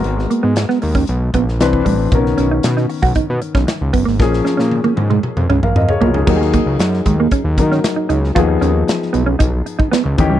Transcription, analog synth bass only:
X:1
M:4/4
L:1/16
Q:1/4=115
K:Gb
V:1 name="Analog synth bass" clef=bass
A,,,2 z A,,2 z E,,2 C,,2 B,,,2 =C,,2 =A,,,2 | =B,,,2 B,,,2 =B,,2 z B,,, B,, B,, z B,,, z ^C,, ^F,,, A,,, | B,,,2 z B,,2 z A,,2 z F,, D,, B,,, F,, z C,, D,, | E,,3 D,, G,,2 E,,2 z E,, E,2 z2 D,,2 |
E,,2 E,,2 z2 C,,2 C,,2 z3 D,, E,, D,, |]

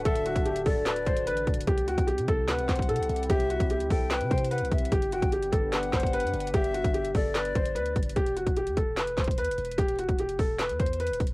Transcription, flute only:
X:1
M:4/4
L:1/8
Q:1/4=148
K:Em
V:1 name="Flute"
e3 d4- d | z g z2 f4 | e3 g3 f e | z g z2 f4 |
e3 d4- d | z8 | z8 |]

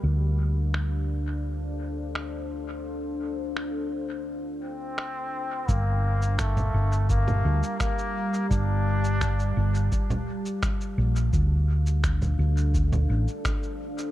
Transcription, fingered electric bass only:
X:1
M:4/4
L:1/8
Q:1/4=85
K:Gm
V:1 name="Fingered electric bass" clef=bass
D,,8- | D,,8 | G,,,3 G,,,2 D,, z2 | G,,,3 G,,, z3 B,,, |
D,,3 D,,2 A,,, z2 |]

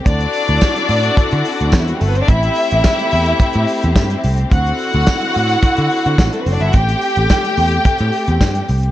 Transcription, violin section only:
X:1
M:4/4
L:1/16
Q:1/4=108
K:Ador
V:1 name="Violin section"
[Dd]12 z/2 E/2 F/2 [G,G]/2 [A,A]/2 [B,B]/2 [Cc]/2 [Dd]/2 | [Ee]12- [Ee]2 z2 | [Ff]12- [Ff]/2 z/2 [A,A]/2 [B,B]/2 [Cc]/2 [Dd]/2 [Ee]/2 [Ff]/2 | [Gg]12- [Gg]2 z2 |]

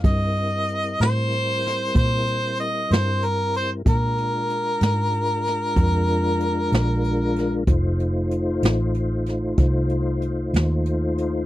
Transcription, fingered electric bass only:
X:1
M:12/8
L:1/8
Q:3/8=63
K:Fmix
V:1 name="Fingered electric bass" clef=bass
G,,3 A,,3 B,,3 G,,3 | B,,3 _A,,3 F,,3 B,,,3 | F,,,3 A,,,3 C,,3 E,,3 |]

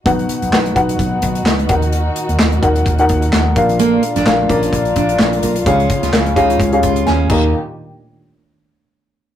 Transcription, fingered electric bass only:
X:1
M:4/4
L:1/16
Q:"Swing 16ths" 1/4=128
K:Ebm
V:1 name="Fingered electric bass" clef=bass
=B,,,2 z B,,, B,,,2 B,,,2 B,,,2 B,,,2 D,,2 E,,2- | E,,2 z E,, E,,2 E,,2 E,,2 E,,2 E,,2 B,,,2- | B,,,2 z B,,, B,,,2 B,,,2 B,,,2 B,,,2 B,,,2 C,,2 | D,,2 z D,, D,,2 D,,2 D,,2 D,,2 E,,2 E,,2 |
z16 |]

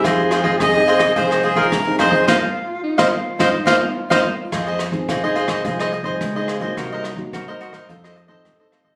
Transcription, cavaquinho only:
X:1
M:4/4
L:1/16
Q:1/4=107
K:Fm
V:1 name="Cavaquinho"
[FAce]2 [FAce] [FAce] z [Ace] [FAce] [Ace] [FAce] [Ace] [FAce] [FAce] z2 [FAce] [Ace] | [cef] z4 [cef] z2 [cef] z [cef] z2 [cef] z2 | [FAce] [Ace] z2 [FAce] [Ace] [FAce] [Ace] [FAce] [Ace] z [Ace]2 [Ace] [FAce] [Ace] | [_GBce] [Bce] z2 [GBce] [Bce] [GBce] [Bce] [F=Ace] [Ace] z [Ace]2 [Ace] [FAce] [Ace] |]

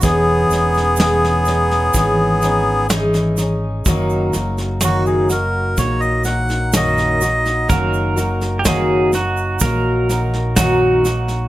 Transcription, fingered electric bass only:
X:1
M:4/4
L:1/8
Q:1/4=63
K:D#phr
V:1 name="Fingered electric bass" clef=bass
E,,, E,,,3 G,,,4 | F,,, F,,,3 A,,,4 | F,,,4 A,,,4 |]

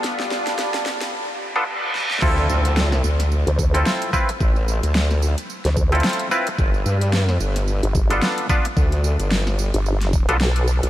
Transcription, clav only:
X:1
M:4/4
L:1/16
Q:"Swing 16ths" 1/4=110
K:Ddor
V:1 name="Clav"
z8 z3 [B,DFA] z4 | [CEFA]6 z4 z [CEFA]3 [CEFB] z | z8 z3 [CEFA]3 [CEFB] z | z8 z3 [B,DFA]3 [B,DFB] z |
z8 z3 [B,DFA] z4 |]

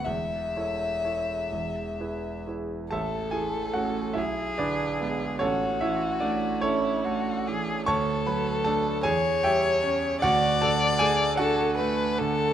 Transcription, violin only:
X:1
M:6/8
L:1/8
Q:3/8=49
K:A
V:1 name="Violin"
e4- e z | A3 G3 | F3 E F G | A3 c3 |
d3 A B A |]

